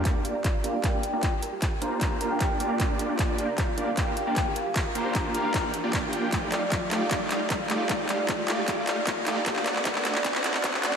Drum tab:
HH |x-x-x-x-x-x-x-x-|x-x-x-x-x-x-x-x-|x-x-x-x-x-x-x-x-|x-x-x-x-x-x-x-x-|
CP |x---x---x---x---|x---x---x---x---|x---x---x---x---|x---x---x---x---|
BD |o---o---o---o---|o---o---o---o---|o---o---o---o---|o---o---o---o---|

HH |x-x-x-x-x-x-x-x-|x-x-x-x-x-x-x-x-|x-x-x-x-x-x-x-x-|
CP |x-x-x-x-x-x-x-x-|x-x-x-x-x-x-x-x-|xxxxxxxxxxxxxxx-|
BD |o---o---o---o---|o---o---o---o---|o---o---o---o---|